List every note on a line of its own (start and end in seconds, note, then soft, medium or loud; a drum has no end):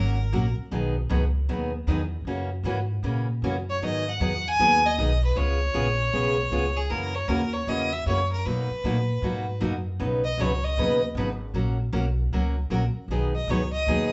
0.00 0.32 G#1 loud
0.00 0.17 F#3 medium
0.00 0.17 A#3 medium
0.00 0.17 C#4 medium
0.00 0.17 F#4 medium
0.00 0.17 A#4 medium
0.00 0.54 A#4 medium
0.32 0.56 A#1 medium
0.32 0.45 F#3 medium
0.32 0.45 A#3 medium
0.32 0.45 C#4 medium
0.32 0.45 F#4 medium
0.32 0.45 A#4 medium
0.71 1.09 B1 medium
0.71 0.94 B2 medium
0.71 0.94 D#3 medium
0.71 0.94 F#3 medium
0.71 0.94 B3 medium
0.71 0.94 D#4 medium
0.71 0.94 G#4 medium
1.09 1.48 C#2 loud
1.09 1.22 B2 medium
1.09 1.22 D#3 medium
1.09 1.22 F#3 medium
1.09 1.22 B3 medium
1.09 1.22 D#4 medium
1.09 1.22 G#4 medium
1.49 1.86 D#2 medium
1.49 1.71 B2 medium
1.49 1.71 D#3 medium
1.49 1.71 F#3 medium
1.49 1.71 B3 medium
1.49 1.71 D#4 medium
1.49 1.72 G#4 medium
1.87 2.24 E2 medium
1.87 2.00 B2 medium
1.87 2.00 D#3 medium
1.87 2.00 F#3 medium
1.87 2.00 B3 medium
1.87 2.00 D#4 medium
1.87 2.00 G#4 medium
2.25 2.63 F#2 medium
2.25 2.49 C#3 medium
2.25 2.49 E3 medium
2.25 2.49 A#3 medium
2.25 2.49 C#4 medium
2.25 2.49 F#4 medium
2.63 3.02 G#2 medium
2.63 2.77 C#3 medium
2.63 2.77 E3 medium
2.63 2.77 A#3 medium
2.63 2.77 C#4 medium
2.63 2.78 F#4 medium
3.03 3.41 A#2 medium
3.03 3.26 C#3 medium
3.03 3.26 E3 medium
3.03 3.26 A#3 medium
3.03 3.26 C#4 medium
3.03 3.26 F#4 medium
3.42 3.80 F#2 medium
3.42 3.55 C#3 medium
3.42 3.55 E3 medium
3.42 3.55 A#3 medium
3.42 3.55 C#4 medium
3.42 3.55 F#4 medium
3.70 3.82 C#5 medium
3.82 4.19 G#2 medium
3.82 4.04 D#3 medium
3.82 4.04 F#3 medium
3.82 4.04 B3 medium
3.82 4.04 D#4 medium
3.82 4.04 G#4 medium
3.82 4.10 D#5 medium
4.09 4.49 F#5 loud
4.20 4.58 E2 loud
4.20 4.32 D#3 medium
4.20 4.32 F#3 medium
4.20 4.32 B3 medium
4.20 4.32 D#4 medium
4.20 4.33 G#4 medium
4.48 4.87 G#5 loud
4.59 4.97 D#2 loud
4.59 4.81 D#3 medium
4.59 4.81 F#3 medium
4.59 4.81 B3 medium
4.59 4.81 D#4 medium
4.59 4.81 G#4 medium
4.86 5.23 D#5 loud
4.98 5.35 B1 medium
4.98 5.09 D#3 medium
4.98 5.10 F#3 medium
4.98 5.10 B3 medium
4.98 5.10 D#4 medium
4.98 5.10 G#4 medium
5.24 5.39 B4 medium
5.35 5.74 C#2 medium
5.35 5.58 C#3 medium
5.35 5.58 G#3 medium
5.35 5.58 B3 medium
5.35 5.58 F4 medium
5.35 5.58 G#4 medium
5.35 6.78 C#5 loud
5.74 6.12 A#1 medium
5.74 5.86 C#3 medium
5.74 5.86 G#3 medium
5.74 5.86 B3 medium
5.74 5.86 F4 medium
5.74 5.86 G#4 medium
6.13 6.50 B1 medium
6.13 6.35 C#3 medium
6.13 6.35 G#3 medium
6.13 6.35 B3 medium
6.13 6.36 F4 medium
6.13 6.36 G#4 medium
6.51 6.89 C#2 medium
6.51 6.64 C#3 medium
6.51 6.64 G#3 medium
6.51 6.64 B3 medium
6.51 6.64 F4 medium
6.51 6.64 G#4 medium
6.77 6.92 G#4 medium
6.90 7.27 F#2 medium
6.90 7.12 C#3 medium
6.90 7.12 E3 medium
6.90 7.12 A#3 medium
6.90 7.12 C#4 medium
6.90 7.13 F#4 medium
6.90 7.17 A#4 medium
7.15 7.30 C#5 medium
7.28 7.66 D#2 loud
7.28 7.41 C#3 medium
7.28 7.41 E3 medium
7.28 7.41 A#3 medium
7.28 7.41 C#4 medium
7.28 7.41 F#4 medium
7.28 7.55 A#4 medium
7.53 7.70 C#5 medium
7.67 8.05 E2 medium
7.67 7.90 C#3 medium
7.67 7.90 E3 medium
7.67 7.90 A#3 medium
7.67 7.90 C#4 medium
7.67 7.90 F#4 medium
7.67 7.95 D#5 medium
7.93 8.07 E5 medium
8.06 8.44 F#2 loud
8.06 8.19 C#3 medium
8.06 8.19 E3 medium
8.06 8.19 A#3 medium
8.06 8.19 C#4 medium
8.06 8.19 F#4 medium
8.06 8.30 C#5 medium
8.32 8.47 A#4 medium
8.46 8.69 B2 medium
8.46 8.68 B2 medium
8.46 8.68 F#3 medium
8.46 8.68 A#3 medium
8.46 8.68 D#4 medium
8.46 8.68 F#4 medium
8.46 9.62 B4 medium
8.71 muted upright bass stroke soft
8.84 9.21 A#2 medium
8.84 8.96 B2 medium
8.84 8.96 F#3 medium
8.84 8.96 A#3 medium
8.84 8.96 D#4 medium
8.84 8.96 F#4 medium
9.22 9.60 G#2 medium
9.22 9.45 B2 medium
9.22 9.45 F#3 medium
9.22 9.45 A#3 medium
9.22 9.45 D#4 medium
9.22 9.45 F#4 medium
9.60 9.99 F#2 loud
9.60 9.73 B2 medium
9.60 9.73 F#3 medium
9.60 9.73 A#3 medium
9.60 9.73 D#4 medium
9.60 9.73 F#4 medium
9.99 10.37 B1 medium
9.99 10.22 B2 medium
9.99 10.22 C#3 medium
9.99 10.22 F#3 medium
9.99 10.22 B3 medium
9.99 10.22 D#4 medium
9.99 10.22 B4 medium
10.25 10.42 D#5 medium
10.38 10.76 C#2 loud
10.38 10.51 B2 medium
10.38 10.51 C#3 medium
10.38 10.51 F#3 medium
10.38 10.51 B3 medium
10.38 10.51 D#4 medium
10.38 10.51 B4 medium
10.38 10.66 C#5 medium
10.64 11.03 D#5 loud
10.77 11.14 D#2 medium
10.77 11.00 B2 medium
10.77 11.00 C#3 medium
10.77 11.00 F#3 medium
10.77 11.00 B3 medium
10.77 11.00 D#4 medium
10.77 11.00 B4 medium
11.15 11.53 G#1 loud
11.15 11.28 B2 medium
11.15 11.28 C#3 medium
11.15 11.28 F#3 medium
11.15 11.28 B3 medium
11.15 11.29 D#4 medium
11.15 11.29 B4 medium
11.54 11.92 A#1 medium
11.54 11.77 F#3 medium
11.54 11.77 A#3 medium
11.54 11.77 C#4 medium
11.54 11.77 F#4 medium
11.54 11.77 A#4 medium
11.93 12.31 B1 loud
11.93 12.05 F#3 medium
11.93 12.05 A#3 medium
11.93 12.05 C#4 medium
11.93 12.05 F#4 medium
11.93 12.05 A#4 medium
12.32 12.69 C#2 medium
12.32 12.54 F#3 medium
12.32 12.55 A#3 medium
12.32 12.55 C#4 medium
12.32 12.55 F#4 medium
12.32 12.55 A#4 medium
12.70 12.93 A#1 loud
12.70 12.83 F#3 medium
12.70 12.82 A#3 medium
12.70 12.83 C#4 medium
12.70 12.83 F#4 medium
12.70 12.83 A#4 medium
12.95 muted upright bass stroke soft
13.08 13.46 B1 medium
13.08 13.32 B2 medium
13.08 13.32 D#3 medium
13.08 13.32 F#3 medium
13.08 13.32 B3 medium
13.08 13.32 D#4 medium
13.08 13.32 G#4 medium
13.36 13.52 D#5 medium
13.47 13.85 C#2 medium
13.47 13.60 B2 medium
13.47 13.60 D#3 medium
13.47 13.61 F#3 medium
13.47 13.61 B3 medium
13.47 13.61 D#4 medium
13.47 13.61 G#4 medium
13.47 13.72 C#5 medium
13.73 14.09 D#5 medium
13.87 14.12 D#2 medium
13.87 14.09 B2 medium
13.87 14.09 D#3 medium
13.87 14.09 F#3 medium
13.87 14.09 B3 medium
13.87 14.09 D#4 medium
13.87 14.10 G#4 medium